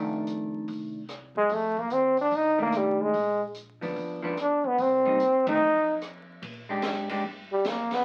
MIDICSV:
0, 0, Header, 1, 5, 480
1, 0, Start_track
1, 0, Tempo, 409836
1, 1758, Time_signature, 4, 2, 24, 8
1, 9425, End_track
2, 0, Start_track
2, 0, Title_t, "Hollow-body jazz guitar"
2, 0, Program_c, 0, 26
2, 0, Note_on_c, 0, 51, 55
2, 0, Note_on_c, 0, 57, 53
2, 0, Note_on_c, 0, 62, 58
2, 1179, Note_off_c, 0, 51, 0
2, 1181, Note_off_c, 0, 57, 0
2, 1187, Note_off_c, 0, 62, 0
2, 3020, Note_on_c, 0, 51, 53
2, 3032, Note_on_c, 0, 57, 58
2, 3033, Note_on_c, 0, 62, 64
2, 3638, Note_off_c, 0, 51, 0
2, 3644, Note_off_c, 0, 57, 0
2, 3644, Note_off_c, 0, 62, 0
2, 4466, Note_on_c, 0, 53, 56
2, 4476, Note_on_c, 0, 59, 59
2, 4487, Note_on_c, 0, 62, 62
2, 4918, Note_off_c, 0, 53, 0
2, 4923, Note_off_c, 0, 59, 0
2, 4929, Note_off_c, 0, 62, 0
2, 4948, Note_on_c, 0, 53, 71
2, 4963, Note_on_c, 0, 59, 70
2, 4972, Note_on_c, 0, 62, 78
2, 5098, Note_off_c, 0, 53, 0
2, 5105, Note_off_c, 0, 59, 0
2, 5110, Note_off_c, 0, 62, 0
2, 5921, Note_on_c, 0, 55, 57
2, 5931, Note_on_c, 0, 63, 68
2, 5934, Note_on_c, 0, 58, 59
2, 6064, Note_off_c, 0, 55, 0
2, 6069, Note_off_c, 0, 63, 0
2, 6071, Note_off_c, 0, 58, 0
2, 6400, Note_on_c, 0, 51, 64
2, 6408, Note_on_c, 0, 57, 64
2, 6415, Note_on_c, 0, 60, 77
2, 6543, Note_off_c, 0, 51, 0
2, 6547, Note_off_c, 0, 57, 0
2, 6551, Note_off_c, 0, 60, 0
2, 7838, Note_on_c, 0, 56, 58
2, 7848, Note_on_c, 0, 62, 59
2, 7855, Note_on_c, 0, 67, 66
2, 8284, Note_off_c, 0, 56, 0
2, 8289, Note_off_c, 0, 62, 0
2, 8292, Note_off_c, 0, 67, 0
2, 8315, Note_on_c, 0, 56, 56
2, 8326, Note_on_c, 0, 62, 60
2, 8332, Note_on_c, 0, 67, 62
2, 8461, Note_off_c, 0, 56, 0
2, 8467, Note_off_c, 0, 62, 0
2, 8470, Note_off_c, 0, 67, 0
2, 9425, End_track
3, 0, Start_track
3, 0, Title_t, "Trombone"
3, 0, Program_c, 1, 57
3, 1608, Note_on_c, 1, 56, 83
3, 1794, Note_on_c, 1, 57, 73
3, 1811, Note_off_c, 1, 56, 0
3, 2099, Note_on_c, 1, 58, 79
3, 2116, Note_off_c, 1, 57, 0
3, 2264, Note_on_c, 1, 60, 76
3, 2282, Note_off_c, 1, 58, 0
3, 2568, Note_off_c, 1, 60, 0
3, 2590, Note_on_c, 1, 62, 84
3, 2759, Note_on_c, 1, 63, 86
3, 2777, Note_off_c, 1, 62, 0
3, 3055, Note_off_c, 1, 63, 0
3, 3067, Note_on_c, 1, 58, 91
3, 3243, Note_on_c, 1, 55, 77
3, 3260, Note_off_c, 1, 58, 0
3, 3545, Note_on_c, 1, 56, 83
3, 3562, Note_off_c, 1, 55, 0
3, 4009, Note_off_c, 1, 56, 0
3, 5165, Note_on_c, 1, 62, 78
3, 5476, Note_on_c, 1, 59, 83
3, 5494, Note_off_c, 1, 62, 0
3, 5646, Note_on_c, 1, 60, 77
3, 5664, Note_off_c, 1, 59, 0
3, 6418, Note_off_c, 1, 60, 0
3, 6423, Note_on_c, 1, 63, 87
3, 7007, Note_off_c, 1, 63, 0
3, 8810, Note_on_c, 1, 55, 77
3, 8993, Note_on_c, 1, 58, 75
3, 9010, Note_off_c, 1, 55, 0
3, 9300, Note_on_c, 1, 59, 80
3, 9318, Note_off_c, 1, 58, 0
3, 9425, Note_off_c, 1, 59, 0
3, 9425, End_track
4, 0, Start_track
4, 0, Title_t, "Upright bass"
4, 0, Program_c, 2, 32
4, 0, Note_on_c, 2, 29, 79
4, 747, Note_off_c, 2, 29, 0
4, 799, Note_on_c, 2, 36, 76
4, 1548, Note_off_c, 2, 36, 0
4, 1582, Note_on_c, 2, 42, 65
4, 1740, Note_off_c, 2, 42, 0
4, 1751, Note_on_c, 2, 41, 82
4, 2201, Note_off_c, 2, 41, 0
4, 2229, Note_on_c, 2, 39, 66
4, 2680, Note_off_c, 2, 39, 0
4, 2714, Note_on_c, 2, 36, 79
4, 3629, Note_off_c, 2, 36, 0
4, 3673, Note_on_c, 2, 34, 84
4, 4424, Note_off_c, 2, 34, 0
4, 4484, Note_on_c, 2, 38, 69
4, 4628, Note_off_c, 2, 38, 0
4, 4635, Note_on_c, 2, 31, 76
4, 5385, Note_off_c, 2, 31, 0
4, 5434, Note_on_c, 2, 37, 68
4, 5586, Note_off_c, 2, 37, 0
4, 5602, Note_on_c, 2, 36, 85
4, 6046, Note_off_c, 2, 36, 0
4, 6071, Note_on_c, 2, 42, 73
4, 6520, Note_off_c, 2, 42, 0
4, 6558, Note_on_c, 2, 41, 77
4, 7470, Note_off_c, 2, 41, 0
4, 7519, Note_on_c, 2, 46, 79
4, 7984, Note_off_c, 2, 46, 0
4, 7999, Note_on_c, 2, 44, 83
4, 8463, Note_off_c, 2, 44, 0
4, 8476, Note_on_c, 2, 43, 75
4, 8942, Note_off_c, 2, 43, 0
4, 8954, Note_on_c, 2, 41, 80
4, 9421, Note_off_c, 2, 41, 0
4, 9425, End_track
5, 0, Start_track
5, 0, Title_t, "Drums"
5, 314, Note_on_c, 9, 42, 53
5, 431, Note_off_c, 9, 42, 0
5, 791, Note_on_c, 9, 46, 40
5, 796, Note_on_c, 9, 36, 32
5, 908, Note_off_c, 9, 46, 0
5, 913, Note_off_c, 9, 36, 0
5, 1270, Note_on_c, 9, 42, 50
5, 1276, Note_on_c, 9, 37, 55
5, 1387, Note_off_c, 9, 42, 0
5, 1393, Note_off_c, 9, 37, 0
5, 1749, Note_on_c, 9, 46, 42
5, 1755, Note_on_c, 9, 36, 31
5, 1866, Note_off_c, 9, 46, 0
5, 1872, Note_off_c, 9, 36, 0
5, 2073, Note_on_c, 9, 36, 46
5, 2190, Note_off_c, 9, 36, 0
5, 2224, Note_on_c, 9, 42, 57
5, 2341, Note_off_c, 9, 42, 0
5, 2542, Note_on_c, 9, 46, 39
5, 2659, Note_off_c, 9, 46, 0
5, 2703, Note_on_c, 9, 46, 44
5, 2714, Note_on_c, 9, 36, 30
5, 2820, Note_off_c, 9, 46, 0
5, 2831, Note_off_c, 9, 36, 0
5, 3187, Note_on_c, 9, 42, 50
5, 3193, Note_on_c, 9, 37, 57
5, 3304, Note_off_c, 9, 42, 0
5, 3310, Note_off_c, 9, 37, 0
5, 3677, Note_on_c, 9, 46, 41
5, 3678, Note_on_c, 9, 36, 31
5, 3794, Note_off_c, 9, 46, 0
5, 3795, Note_off_c, 9, 36, 0
5, 4151, Note_on_c, 9, 42, 54
5, 4268, Note_off_c, 9, 42, 0
5, 4476, Note_on_c, 9, 46, 37
5, 4593, Note_off_c, 9, 46, 0
5, 4639, Note_on_c, 9, 46, 42
5, 4640, Note_on_c, 9, 36, 31
5, 4756, Note_off_c, 9, 46, 0
5, 4757, Note_off_c, 9, 36, 0
5, 5118, Note_on_c, 9, 42, 52
5, 5124, Note_on_c, 9, 37, 55
5, 5235, Note_off_c, 9, 42, 0
5, 5241, Note_off_c, 9, 37, 0
5, 5600, Note_on_c, 9, 46, 42
5, 5603, Note_on_c, 9, 36, 31
5, 5717, Note_off_c, 9, 46, 0
5, 5720, Note_off_c, 9, 36, 0
5, 5920, Note_on_c, 9, 36, 55
5, 6037, Note_off_c, 9, 36, 0
5, 6086, Note_on_c, 9, 42, 56
5, 6203, Note_off_c, 9, 42, 0
5, 6404, Note_on_c, 9, 36, 76
5, 6404, Note_on_c, 9, 51, 70
5, 6521, Note_off_c, 9, 36, 0
5, 6521, Note_off_c, 9, 51, 0
5, 7044, Note_on_c, 9, 42, 50
5, 7049, Note_on_c, 9, 37, 60
5, 7161, Note_off_c, 9, 42, 0
5, 7167, Note_off_c, 9, 37, 0
5, 7524, Note_on_c, 9, 36, 19
5, 7524, Note_on_c, 9, 51, 56
5, 7641, Note_off_c, 9, 36, 0
5, 7641, Note_off_c, 9, 51, 0
5, 7988, Note_on_c, 9, 44, 61
5, 7988, Note_on_c, 9, 51, 65
5, 7994, Note_on_c, 9, 38, 66
5, 7999, Note_on_c, 9, 36, 20
5, 8105, Note_off_c, 9, 44, 0
5, 8105, Note_off_c, 9, 51, 0
5, 8111, Note_off_c, 9, 38, 0
5, 8116, Note_off_c, 9, 36, 0
5, 8308, Note_on_c, 9, 51, 63
5, 8425, Note_off_c, 9, 51, 0
5, 8477, Note_on_c, 9, 36, 22
5, 8594, Note_off_c, 9, 36, 0
5, 8954, Note_on_c, 9, 44, 57
5, 8954, Note_on_c, 9, 51, 60
5, 8956, Note_on_c, 9, 36, 18
5, 8959, Note_on_c, 9, 38, 63
5, 9071, Note_off_c, 9, 44, 0
5, 9071, Note_off_c, 9, 51, 0
5, 9073, Note_off_c, 9, 36, 0
5, 9077, Note_off_c, 9, 38, 0
5, 9262, Note_on_c, 9, 51, 42
5, 9268, Note_on_c, 9, 38, 44
5, 9380, Note_off_c, 9, 51, 0
5, 9385, Note_off_c, 9, 38, 0
5, 9425, End_track
0, 0, End_of_file